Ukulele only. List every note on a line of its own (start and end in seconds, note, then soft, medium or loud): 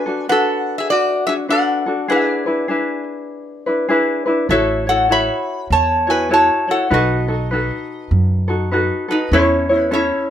0.06 0.29 D4 soft
0.06 0.29 F#4 soft
0.06 0.29 A4 medium
0.29 1.27 D4 medium
0.29 1.26 F#4 medium
0.29 1.27 A4 medium
0.29 1.48 B4 medium
1.27 1.48 D4 soft
1.27 1.49 F#4 soft
1.48 1.86 D4 medium
1.48 1.86 F#4 medium
1.48 1.85 A4 medium
1.48 1.85 B4 medium
1.86 2.08 D4 soft
1.86 2.09 F#4 soft
1.86 2.09 A4 medium
2.08 2.46 D4 medium
2.08 2.45 E4 medium
2.08 2.46 G#4 medium
2.08 2.45 B4 medium
2.46 2.68 D4 soft
2.46 2.69 E4 soft
2.46 2.69 B4 medium
2.68 3.66 D4 medium
2.68 3.67 E4 medium
2.68 3.66 G#4 medium
2.68 3.65 B4 medium
3.66 3.88 D4 soft
3.66 3.88 E4 medium
3.66 3.89 B4 soft
3.89 4.26 D4 medium
3.89 4.26 E4 medium
3.89 4.26 G#4 medium
3.89 4.24 B4 medium
4.26 4.50 D4 soft
4.26 4.49 E4 soft
4.26 4.49 B4 medium
4.49 4.87 E4 medium
4.49 4.87 F#4 medium
4.49 4.86 A4 medium
4.49 4.86 C#5 medium
4.87 5.09 E4 soft
4.87 5.09 F#4 soft
4.87 5.10 C#5 soft
5.09 6.07 E4 medium
5.09 6.07 F#4 medium
5.09 6.29 A4 medium
5.09 6.06 C#5 medium
6.07 6.29 E4 soft
6.07 6.30 F#4 soft
6.07 6.30 C#5 medium
6.29 6.67 E4 medium
6.29 6.67 F#4 medium
6.29 6.67 A4 medium
6.29 6.66 C#5 medium
6.68 6.91 E4 soft
6.68 6.90 F#4 soft
6.68 6.90 C#5 soft
6.90 7.27 D#4 medium
6.90 7.28 F#4 medium
6.90 7.27 A4 medium
6.90 7.27 B4 medium
7.28 7.51 D#4 soft
7.28 7.51 F#4 soft
7.28 7.51 A4 medium
7.51 8.49 D#4 medium
7.51 8.48 F#4 medium
7.51 8.47 A4 medium
7.51 8.48 B4 medium
8.48 8.71 D#4 soft
8.48 8.72 F#4 medium
8.48 8.71 A4 medium
8.71 9.09 D#4 medium
8.71 9.08 F#4 medium
8.71 9.07 A4 medium
8.71 9.08 B4 medium
9.08 9.32 D#4 soft
9.08 9.32 F#4 soft
9.08 9.31 A4 soft
9.32 9.69 C#4 medium
9.32 9.69 E4 medium
9.32 9.69 A4 medium
9.32 9.68 C#5 medium
9.69 9.90 C#4 soft
9.69 9.91 E4 soft
9.69 9.92 C#5 medium
9.91 10.30 C#4 medium
9.91 10.30 E4 medium
9.91 10.30 A4 medium
9.91 10.30 C#5 medium